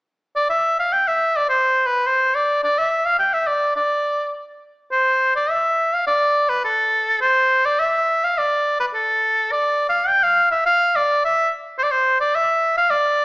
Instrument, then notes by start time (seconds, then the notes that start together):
shawm
0.36 D5
0.50 E5
0.79 F5
0.93 G5
1.07 E5
1.36 D5
1.49 C5
1.86 B4
2.06 C5
2.35 D5
2.64 D5
2.78 E5
3.05 F5
3.19 G5
3.33 E5
3.47 D5
3.76 D5
4.91 C5
5.36 D5
5.50 E5
5.93 F5
6.07 D5
6.49 B4
6.64 A4
7.21 C5
7.65 D5
7.80 E5
8.24 F5
8.38 D5
8.80 B4
8.94 A4
9.51 D5
9.89 F5
10.08 G5
10.23 F5
10.51 E5
10.66 F5
10.96 D5
11.25 E5
11.78 C5
11.83 D5
11.91 C5
12.20 D5
12.35 E5
12.77 F5
12.90 D5